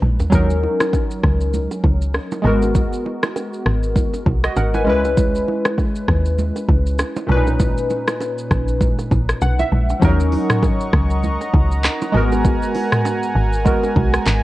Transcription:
0.02 log drum bass A#1, low conga
0.20 floor tom, high bongo, shaker
0.30 log drum bass D#2, synth keys F#3 C#4 D#4, kick, low conga, shaker
0.35 synth keys A#4
0.50 shaker
0.63 low bongo
0.80 cross-stick, low bongo, shaker
0.93 kick, high bongo, shaker
1.11 shaker
1.23 log drum bass C#2, kick, cross-stick
1.41 shaker
1.54 low conga, shaker
1.71 high bongo, shaker
1.84 log drum bass C#2, kick, low bongo
2.02 shaker
2.14 cross-stick, high bongo, shaker
2.31 low bongo, shaker
2.42 log drum bass G#1, synth keys G#3 B3 F#4, low conga
2.47 synth keys A#4
2.62 high bongo, shaker
2.75 kick, low conga, shaker
2.93 shaker
3.06 low bongo
3.23 cross-stick, low bongo, shaker
3.36 high bongo, shaker
3.53 shaker
3.66 log drum bass G#1, cross-stick
3.83 shaker
3.96 kick, low conga, shaker
4.14 high bongo, shaker
4.26 log drum bass B1, kick, low bongo
4.44 synth keys F#4 D#5, cross-stick, shaker
4.56 log drum bass G#1, synth keys A#4 F#5, high bongo, shaker
4.74 synth keys B4 G#5, low bongo, shaker
4.85 log drum bass C#2, synth keys G#3 C#4 E4, low conga
4.90 synth keys B4
5.05 high bongo, shaker
5.17 kick, low conga, shaker
5.35 shaker
5.48 low bongo
5.65 cross-stick, low bongo, shaker
5.78 kick, high bongo, shaker
5.96 shaker
6.08 log drum bass D#2, kick, cross-stick
6.26 shaker
6.39 low conga, shaker
6.56 high bongo, shaker
6.69 log drum bass C#2, kick, low bongo
6.87 shaker
6.99 cross-stick, high bongo, shaker
7.16 low bongo, shaker
7.27 log drum bass B1, synth keys A#2 C#4 D4, low conga
7.32 synth keys B4
7.37 synth keys D#4
7.47 high bongo, shaker
7.60 kick, low conga, shaker
7.78 shaker
7.90 low bongo, shaker
8.08 cross-stick, low bongo, shaker
8.21 high bongo, shaker
8.38 shaker
8.51 log drum bass A#1, kick, cross-stick, shaker
8.68 shaker
8.81 kick, low conga, shaker
8.99 high bongo, shaker
9.11 log drum bass A#1, kick, low bongo, shaker
9.29 cross-stick, shaker
9.41 log drum bass B1, synth keys F#5, high bongo, shaker
9.59 synth keys E5, low bongo, shaker
9.72 log drum bass A#1, low conga
9.89 high bongo, shaker
10.00 log drum bass D#2, synth keys F3 C#4 D#4, analog synth pad D#5 F#5 A#5 C#6, kick, low conga, shaker
10.05 synth keys F#3 A#4
10.20 shaker
10.32 open hi-hat, low bongo
10.50 cross-stick, mid tom, shaker
10.63 kick, high bongo, shaker
10.80 shaker
10.93 log drum bass C#2, kick, cross-stick
11.10 shaker
11.23 low conga, shaker
11.41 high bongo, shaker
11.54 log drum bass C#2, kick, low bongo
11.71 shaker
11.84 cross-stick, clap, high bongo, shaker
12.01 low bongo, shaker
12.12 log drum bass G#1, synth keys G#3 B3 F#4, analog synth pad G#5, low conga
12.17 synth keys A#4
12.32 high bongo, shaker
12.44 kick, low conga, shaker
12.62 shaker
12.75 open hi-hat, low bongo
12.92 cross-stick, mid tom, shaker
13.05 high bongo, shaker
13.23 shaker
13.35 log drum bass G#1
13.53 shaker
13.65 synth keys G#3 B3 F#4 A#4, kick, low conga, shaker
13.83 high bongo, shaker
13.96 log drum bass B1, kick, low bongo
14.14 cross-stick, shaker
14.26 log drum bass G#1, clap, high bongo, shaker

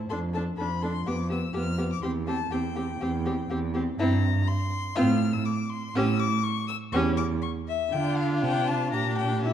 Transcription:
0.09 cello F2, viola D4, violin A4 C6
0.33 viola D4, violin A4 A5
0.58 cello F2, viola D4, violin A4 B5
0.82 viola D4, violin A4 C6
1.07 cello F2, viola B3, violin G4 D6
1.30 viola B3, violin G4 E6
1.54 cello F2, viola B3, violin G4 F6
1.78 viola B3, violin G4
1.93 violin D6
2.03 cello E2, viola C4, violin G4 C6
2.27 viola C4, violin G4 A5
2.51 cello E2, viola C4, violin G4 G5
2.76 viola C4, violin G4
3.01 cello E2, viola C4, violin G4
3.26 viola C4, violin G4
3.50 cello E2, viola C4, violin G4
3.74 viola C4, violin G4
3.99 cello G2, viola C4, violin E4 A#5
4.47 violin C6
4.96 cello A2, viola C4, violin F4 F6
5.33 violin E6
5.45 violin D6
5.70 violin C6
5.95 cello A2, viola C#4, violin G4 E6
6.19 violin D6
6.43 violin C#6
6.68 violin E6
6.92 cello E2, viola C#4, violin G4 C#6
7.17 violin D6
7.42 violin C#6
7.68 violin E5
7.92 cello D3, viola D4, violin F4 G5
8.17 violin F5
8.42 cello C3, violin G5
8.67 violin A5
8.92 cello A#2, viola D4, violin G4 A#5
9.17 violin G5
9.44 viola E4, violin E5

